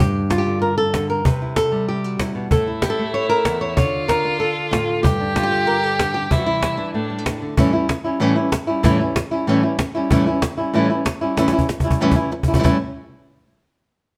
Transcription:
Already playing: D3
0.00 G2 G4
0.30 F4, cajon slap
0.38 G4
0.46 D3, cajon slap
0.62 A#4, cajon slap
0.78 A4, cajon slap
0.94 D3, cajon slap
1.10 A#4
1.25 C3 B4, cajon bass
1.42 E4
1.56 A4, cajon slap
1.72 G3, cajon slap
1.88 G4
2.04 F#4
2.19 C3 E4, cajon slap
2.35 B2
2.51 A2 E4 A4, cajon bass
2.68 E4
2.82 G4, cajon slap
2.90 A4
2.99 A3
3.14 C#5, cajon slap
3.29 A#4, cajon slap
3.45 E2, cajon slap
3.61 C#5
3.77 D3 F4 C#5, cajon bass
4.08 A#4, cajon slap
4.25 D4, cajon slap
4.40 A4, cajon slap
4.57 cajon slap
4.71 A2 F4, cajon slap
5.03 G2 G4, cajon bass
5.21 D4
5.36 F4, cajon slap
5.43 G4
5.51 D3, cajon slap
5.67 A#4
5.83 A4, cajon slap
5.99 D3, cajon slap
6.14 G4
6.31 C3 E3 G3 E4, cajon bass
6.38 F#4
6.46 E4
6.63 cajon slap
6.77 E3 D4, cajon slap
6.94 A2 A3 D4, cajon slap
7.10 G3, cajon slap
7.18 A3
7.26 A3, cajon slap
7.42 D3
7.57 A2 E3 G3 C#4 E4, cajon bass
7.73 G3 C#4 E4
7.89 muted nylon-string guitar stroke, cajon slap
8.04 G3 C#4 E4, cajon slap
8.20 A2 E3 G3 C#4 E4, cajon slap
8.36 G3 C#4 E4, cajon slap
8.52 muted nylon-string guitar stroke, cajon slap
8.67 G3 C#4 E4
8.83 A2 E3 G3 C#4 E4, cajon bass
8.99 G3 C#4 E4
9.16 muted nylon-string guitar stroke, cajon slap
9.31 G3 C#4 E4, cajon slap
9.47 A2 E3 G3 C#4 E4
9.63 G3 C#4 E4
9.78 muted nylon-string guitar stroke, cajon slap
9.95 G3 C#4 E4
10.10 A2 E3 G3 C#4 E4, cajon bass
10.26 G3 C#4 E4
10.42 muted nylon-string guitar stroke, cajon slap
10.57 G3 C#4 E4, cajon slap
10.74 A2 E3 G3 C#4 E4
10.90 G3 C#4 E4, cajon slap
11.05 muted nylon-string guitar stroke, cajon slap
11.21 G3 C#4 E4
11.37 A2 E3 G3 C#4 E4, cajon slap
11.48 cajon slap
11.53 G3 C#4 E4
11.59 cajon bass
11.69 muted nylon-string guitar stroke, cajon slap
11.80 E4, cajon bass
11.85 G3 C#4
11.91 cajon bass
12.01 A2 E3 G3 C#4 E4
12.12 cajon bass
12.16 G3 C#4 E4
12.32 muted nylon-string guitar stroke
12.43 cajon bass
12.48 G3 C#4 E4
12.54 E3 G3 C#4 E4, cajon bass
12.59 E3 G3 C#4 E4
12.63 A2 E3 G3 C#4 E4, cajon bass

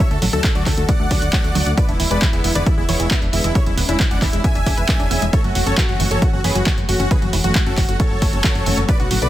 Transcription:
0.00 D3 F#3 A3 F#4
0.11 D2 A3 A4, closed hi-hat
0.22 A1 F#3, open hi-hat
0.33 D2 D3 F#3 A3 F#4 A4, closed hi-hat
0.44 D4 A4, kick, clap, closed hi-hat
0.55 D2 D3 F#3 A3 F#4 D5, closed hi-hat
0.66 D2 F#3 A4, kick, clap, open hi-hat
0.77 D2 D3 F#3 A3 F#4 A4, closed hi-hat
0.89 F#3 D5 F#5, kick, closed hi-hat
1.00 D2 A3
1.11 D2 D3 F#3 A3 D4 F#4, kick, open hi-hat
1.22 D2 F#4, closed hi-hat
1.33 D3 F#3 A3 F#4, kick, clap, closed hi-hat
1.44 D2 A3, closed hi-hat
1.55 D2 D3 F#3 A3 F#4, open hi-hat
1.66 D2 A3, closed hi-hat
1.77 D3 G#3 B3 E4 B4 D5, kick, closed hi-hat
1.88 E1 D4 E4, closed hi-hat
2.00 D1 E3 E4, open hi-hat
2.11 E1 D3 G#3 B3 E4 B4 D5, closed hi-hat
2.22 E3 E4, kick, clap, closed hi-hat
2.33 E1 D3 G#3 B3 E4, closed hi-hat
2.44 E1 B3 E4, open hi-hat
2.55 E1 D3 G#3 B3 D4 E4 B4 D5, closed hi-hat
2.66 E3 E4, kick, closed hi-hat
2.77 E1 G#3 E4
2.89 E1 D3 E3 G#3 B3 E4 C#5, open hi-hat
3.00 E1 G#3 E4, closed hi-hat
3.11 D3 G#3 B3 E4, kick, clap, closed hi-hat
3.22 E1 D4, closed hi-hat
3.33 E1 D3 E3 G#3 B3 E4, open hi-hat
3.44 E1 G#3 E4, closed hi-hat
3.55 D3 E3 G#3 C#4 E4 C#5, kick, closed hi-hat
3.66 E1 G#3 E4, closed hi-hat
3.77 D1 B3, open hi-hat
3.88 E1 D3 G#3 C#4 D4 E4, closed hi-hat
4.00 E3, kick, clap, closed hi-hat
4.11 E1 D3 G#3 C#4 E4 D5 F#5, closed hi-hat
4.22 E1 E3 E4, kick, clap, open hi-hat
4.33 E1 D3 G#3 C#4 E4, closed hi-hat
4.44 B3 E5 G#5, kick, closed hi-hat
4.55 E1 D4, closed hi-hat
4.66 E1 D3 G#3 C#4 D4 E4, kick, open hi-hat
4.77 E1 B4, closed hi-hat
4.88 D3 E3 G#3 C#4 E4, kick, clap, closed hi-hat
5.00 E1 D4, closed hi-hat
5.11 E1 D3 G#3 B3 C#4 E4, open hi-hat
5.22 E1 G#3, closed hi-hat
5.33 E3 A3 C#4 F#4 A4 C#5, kick, closed hi-hat
5.44 F#1 F#3 F#4, closed hi-hat
5.55 E1 A3 F#4, open hi-hat
5.66 F#1 E3 A3 C#4 F#4 A4 C#5, closed hi-hat
5.78 E3 F#4, kick, clap, closed hi-hat
5.89 F#1 E3 F#3 A3 C#4 F#4, closed hi-hat
6.00 F#1 E3 F#4, open hi-hat
6.11 F#1 E3 F#3 A3 C#4 F#4 A4 C#5, closed hi-hat
6.22 A3 F#4, kick, closed hi-hat
6.33 F#1 C#4 F#4
6.44 F#1 E3 A3 C#4 F#4 G#4 B4, open hi-hat
6.55 F#1 F#3 F#4, closed hi-hat
6.66 E3 A3 C#4 F#4, kick, clap, closed hi-hat
6.78 F#1 F#3, closed hi-hat
6.89 F#1 E3 A3 C#4 F#4, open hi-hat
7.00 F#1 C#4 F#4, closed hi-hat
7.11 E3 A3 C#4 F#4 G#4 B4, kick, closed hi-hat
7.22 F#1 F#3 F#4, closed hi-hat
7.33 E1 E3, open hi-hat
7.44 F#1 E3 F#3 A3 C#4 F#4, closed hi-hat
7.55 A3 F#4, kick, clap, closed hi-hat
7.66 F#1 E3 A3 C#4 F#4 A4, closed hi-hat
7.77 F#1 E3 F#4, kick, clap, open hi-hat
7.89 F#1 E3 F#3 A3 C#4 F#4, closed hi-hat
8.00 E3 A4 C#5, kick, closed hi-hat
8.11 F#1 F#3
8.22 F#1 E3 A3 C#4 F#4, kick, open hi-hat
8.33 F#1 C#4, closed hi-hat
8.44 E3 A3 C#4 F#4, kick, clap, closed hi-hat
8.55 F#1 F#3, closed hi-hat
8.66 F#1 E3 A3 C#4 F#4, open hi-hat
8.77 F#1 F#3, closed hi-hat
8.88 D3 A3 B3 F#4 B4 D5, kick, closed hi-hat
9.00 B1 D4 F#4, closed hi-hat
9.11 A1 F#3 F#4, open hi-hat
9.22 B1 D3 A3 B3 F#4 B4 D5, closed hi-hat

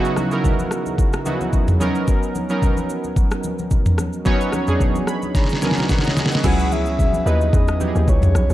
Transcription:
Already playing: C#3 F#3 B3 D#4 E4 F#4
0.05 shaker
0.16 cross-stick, high conga, shaker
0.31 C#3 F#3 B3 D#4 E4 A#4, shaker
0.44 kick, low conga, shaker
0.59 high conga, shaker
0.71 cross-stick, shaker
0.86 high conga, shaker
0.98 kick, shaker
1.13 cross-stick, shaker
1.25 C#3 F#3 B3 D#4 E4 F#4, high conga, shaker
1.41 high conga, shaker
1.53 kick, low conga, shaker
1.68 mid tom, high conga, shaker
1.80 F#3 B3 C#4 D#4 A#4, high conga, shaker
1.95 shaker
2.08 kick, shaker
2.23 shaker
2.35 high conga, shaker
2.49 F#3 B3 C#4 D#4 A#4, shaker
2.62 kick, low conga, shaker
2.77 high conga, shaker
2.90 shaker
3.04 high conga, shaker
3.16 kick, shaker
3.31 cross-stick, shaker
3.44 high conga, shaker
3.59 high conga, shaker
3.71 kick, low conga, shaker
3.86 mid tom, high conga, shaker
3.98 cross-stick, high conga, shaker
4.13 shaker
4.25 F#3 B3 C#4 D#4 C#5, kick, shaker
4.41 shaker
4.52 cross-stick, high conga, shaker
4.67 F#3 B3 C#4 D4 G#4, mid tom, shaker
4.75 D#4
4.80 kick, low conga, shaker
4.95 high conga, shaker
5.07 B5, cross-stick, shaker
5.22 high conga, shaker
5.35 A#5, kick, snare, shaker
5.44 snare
5.49 snare, shaker
5.62 F#3 B3 C#4 D4 A#4 G#5, snare, high conga, shaker
5.69 D#4, snare
5.77 snare, high conga, shaker
5.89 C#5 F#5, kick, snare, low conga, shaker
5.99 snare
6.04 D#5 A#5, snare, high conga, shaker
6.17 D#5, snare, high conga, shaker
6.26 snare
6.31 C#5 F#5, snare, shaker
6.43 C#2 F#3 B3 C#4 E4 G#4 F#5, kick, crash, low conga, shaker
6.59 shaker
6.72 E5, high conga, shaker
6.86 shaker
6.99 kick, low conga, shaker
7.13 high conga, shaker
7.25 D#2 F#3 B3 D#4 E4 B4 D#5, shaker
7.41 high conga, shaker
7.53 E2, kick, shaker
7.68 cross-stick, shaker
7.80 F#3 B3 D#4 E4 G4, high conga, shaker
7.88 G#4
7.96 D#2, high conga, shaker
8.08 C#2 C#5, kick, low conga, shaker
8.22 mid tom, high conga, shaker
8.35 B1, cross-stick, high conga, shaker
8.50 B1, shaker

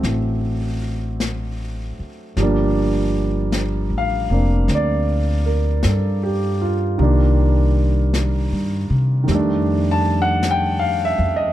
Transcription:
Already playing: F#3 A3 C4 D4
0.03 A1, brush sweep, snare
1.20 brush sweep, snare, hi-hat pedal
1.99 muted upright bass stroke
2.37 G1 F3 G3 A#3, brush sweep, snare
2.42 D4
3.52 brush sweep, snare, hi-hat pedal
3.90 A1
3.98 F5
4.30 F1 A#3 C4 D4
4.68 D2, brush sweep, snare
4.75 D5
5.46 A#4
5.83 G2 A4, brush sweep, snare, hi-hat pedal
6.23 G4
6.61 F4
6.98 C2 D#3 G3 A#3, brush sweep
7.02 D4
8.14 brush sweep, snare, hi-hat pedal
8.51 G2
8.90 C3
9.24 D#3 G3
9.28 F2 A3, brush sweep, snare
9.34 D4
9.91 A5
10.22 F#5
10.43 brush sweep, snare, hi-hat pedal
10.51 G5
10.79 F5
11.05 E5
11.19 F2
11.36 D#5

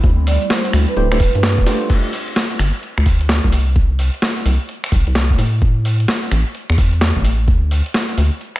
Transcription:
Already playing: C4 E4
0.04 D2 G3 A3, kick, closed hi-hat
0.27 D5, open hi-hat
0.42 closed hi-hat
0.50 C5, snare
0.65 closed hi-hat
0.73 D2, finger snap, open hi-hat
0.88 B4, closed hi-hat
0.97 D1 A3 D4 E4 G4 C5, closed hi-hat
1.12 A3 D4 E4 G4 C5, finger snap, open hi-hat
1.20 kick, open hi-hat
1.35 G2, closed hi-hat
1.43 snare, closed hi-hat
1.58 D1, kick
1.66 A3 D4 F4 G4 C5, snare, open hi-hat
1.90 kick, closed hi-hat, crash
2.13 open hi-hat
2.28 closed hi-hat
2.36 snare
2.51 closed hi-hat
2.59 G1, finger snap, open hi-hat
2.83 closed hi-hat
2.98 D2, finger snap
3.06 kick, open hi-hat
3.21 closed hi-hat
3.29 snare, closed hi-hat
3.44 C2, kick
3.52 open hi-hat
3.76 kick, closed hi-hat
3.99 open hi-hat
4.14 closed hi-hat
4.22 snare
4.37 closed hi-hat
4.45 C2, open hi-hat
4.69 closed hi-hat
4.84 finger snap, open hi-hat
4.92 C2, kick, open hi-hat
5.07 C2, closed hi-hat
5.15 snare, closed hi-hat
5.30 kick
5.38 A2, open hi-hat
5.62 kick, closed hi-hat
5.85 open hi-hat
6.00 closed hi-hat
6.08 snare
6.23 closed hi-hat
6.31 A1, finger snap, open hi-hat
6.55 closed hi-hat
6.70 E2, finger snap
6.78 kick, open hi-hat
6.93 closed hi-hat
7.01 snare, closed hi-hat
7.16 A1, kick
7.24 open hi-hat
7.48 D2, kick, closed hi-hat
7.71 open hi-hat
7.86 closed hi-hat
7.94 snare
8.09 closed hi-hat
8.18 D2, open hi-hat
8.41 closed hi-hat
8.56 finger snap, open hi-hat

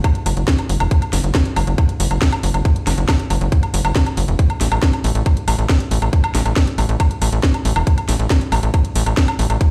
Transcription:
0.04 kick, closed hi-hat, high woodblock
0.15 closed hi-hat
0.26 F#1, open hi-hat, high woodblock
0.37 F#1, closed hi-hat
0.48 kick, snare, closed hi-hat
0.59 closed hi-hat, high woodblock
0.69 F#1, open hi-hat
0.80 E1, closed hi-hat, high woodblock
0.91 kick, closed hi-hat
1.02 closed hi-hat, high woodblock
1.13 F#1, snare, open hi-hat
1.24 F#1, closed hi-hat
1.35 kick, snare, closed hi-hat, high woodblock
1.46 closed hi-hat
1.56 F#1, open hi-hat, high woodblock
1.67 F#1, closed hi-hat
1.78 kick, closed hi-hat, high woodblock
1.89 closed hi-hat
2.00 F#1, open hi-hat
2.11 F#1, closed hi-hat, high woodblock
2.22 kick, snare, closed hi-hat
2.33 closed hi-hat, high woodblock
2.43 F#1, open hi-hat
2.54 F#1, closed hi-hat, high woodblock
2.65 kick, closed hi-hat
2.76 closed hi-hat
2.87 F#1, snare, open hi-hat, high woodblock
2.98 F#1, closed hi-hat
3.09 kick, snare, closed hi-hat, high woodblock
3.19 closed hi-hat
3.30 F#1, open hi-hat, high woodblock
3.41 F#1, closed hi-hat
3.52 kick, closed hi-hat
3.63 closed hi-hat, high woodblock
3.74 F#1, open hi-hat
3.85 F#1, closed hi-hat, high woodblock
3.96 kick, snare, closed hi-hat
4.06 closed hi-hat, high woodblock
4.17 F#1, open hi-hat
4.28 E1, closed hi-hat
4.39 kick, closed hi-hat
4.50 closed hi-hat, high woodblock
4.61 A1, snare, open hi-hat
4.72 A1, closed hi-hat, high woodblock
4.83 kick, snare, closed hi-hat
4.93 closed hi-hat, high woodblock
5.04 A1, open hi-hat
5.15 A1, closed hi-hat
5.26 kick, closed hi-hat, high woodblock
5.37 closed hi-hat
5.48 A1, open hi-hat, high woodblock
5.59 A1, closed hi-hat
5.69 kick, snare, closed hi-hat, high woodblock
5.80 closed hi-hat
5.91 A1, open hi-hat
6.02 A1, closed hi-hat, high woodblock
6.13 kick, closed hi-hat
6.24 closed hi-hat, high woodblock
6.35 A1, snare, open hi-hat
6.46 A1, closed hi-hat, high woodblock
6.56 kick, snare, closed hi-hat
6.67 closed hi-hat
6.78 A1, open hi-hat, high woodblock
6.89 A1, closed hi-hat
7.00 kick, closed hi-hat, high woodblock
7.11 closed hi-hat
7.22 A1, open hi-hat, high woodblock
7.33 A1, closed hi-hat
7.43 kick, snare, closed hi-hat
7.54 closed hi-hat, high woodblock
7.65 A1, open hi-hat
7.76 E1, closed hi-hat, high woodblock
7.87 kick, closed hi-hat
7.98 closed hi-hat, high woodblock
8.09 A1, snare, open hi-hat
8.19 A1, closed hi-hat
8.30 kick, snare, closed hi-hat, high woodblock
8.41 closed hi-hat
8.52 A1, open hi-hat, high woodblock
8.63 A1, closed hi-hat
8.74 kick, closed hi-hat, high woodblock
8.85 closed hi-hat
8.96 A1, open hi-hat
9.06 A1, closed hi-hat, high woodblock
9.17 kick, snare, closed hi-hat
9.28 closed hi-hat, high woodblock
9.39 A1, open hi-hat
9.50 A1, closed hi-hat, high woodblock
9.61 kick, closed hi-hat

